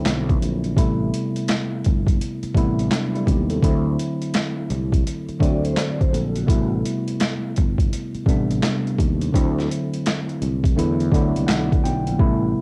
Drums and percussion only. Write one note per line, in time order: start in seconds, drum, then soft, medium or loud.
0.06 snare loud
0.06 clap medium
0.06 closed hi-hat medium
0.29 kick medium
0.29 closed hi-hat soft
0.42 closed hi-hat medium
0.64 closed hi-hat soft
0.77 kick loud
0.77 closed hi-hat medium
1.14 closed hi-hat medium
1.36 closed hi-hat soft
1.48 snare loud
1.48 clap medium
1.48 closed hi-hat medium
1.84 kick medium
1.84 closed hi-hat medium
2.07 kick medium
2.07 closed hi-hat soft
2.21 closed hi-hat medium
2.43 closed hi-hat soft
2.54 kick medium
2.54 closed hi-hat medium
2.79 closed hi-hat soft
2.91 snare loud
2.91 clap medium
2.91 closed hi-hat medium
3.15 closed hi-hat soft
3.27 kick medium
3.27 closed hi-hat medium
3.50 closed hi-hat soft
3.63 kick loud
3.63 closed hi-hat medium
3.99 closed hi-hat medium
4.22 closed hi-hat soft
4.34 snare loud
4.34 clap medium
4.34 closed hi-hat medium
4.70 closed hi-hat medium
4.92 kick medium
4.92 closed hi-hat soft
5.07 closed hi-hat medium
5.29 closed hi-hat soft
5.40 kick medium
5.40 closed hi-hat medium
5.65 closed hi-hat soft
5.77 snare loud
5.77 clap medium
5.77 closed hi-hat medium
6.01 kick medium
6.01 closed hi-hat soft
6.14 closed hi-hat medium
6.36 closed hi-hat soft
6.48 kick loud
6.48 closed hi-hat medium
6.85 closed hi-hat medium
7.08 closed hi-hat soft
7.20 snare loud
7.20 clap medium
7.20 closed hi-hat medium
7.56 kick medium
7.56 closed hi-hat medium
7.78 kick medium
7.78 closed hi-hat soft
7.93 closed hi-hat medium
8.15 closed hi-hat soft
8.26 kick medium
8.26 closed hi-hat medium
8.51 closed hi-hat soft
8.63 snare loud
8.63 clap medium
8.63 closed hi-hat medium
8.87 closed hi-hat soft
8.99 kick medium
8.99 closed hi-hat medium
9.21 closed hi-hat soft
9.34 kick loud
9.34 closed hi-hat medium
9.59 snare soft
9.59 closed hi-hat soft
9.71 closed hi-hat medium
9.94 closed hi-hat soft
10.06 snare medium
10.06 clap medium
10.06 closed hi-hat medium
10.29 closed hi-hat soft
10.42 closed hi-hat medium
10.64 kick medium
10.64 closed hi-hat soft
10.79 closed hi-hat medium
11.00 closed hi-hat soft
11.12 kick loud
11.12 closed hi-hat medium
11.36 closed hi-hat soft
11.49 snare loud
11.49 clap medium
11.49 closed hi-hat medium
11.72 kick medium
11.72 closed hi-hat soft
11.85 closed hi-hat medium
12.07 closed hi-hat soft
12.20 kick loud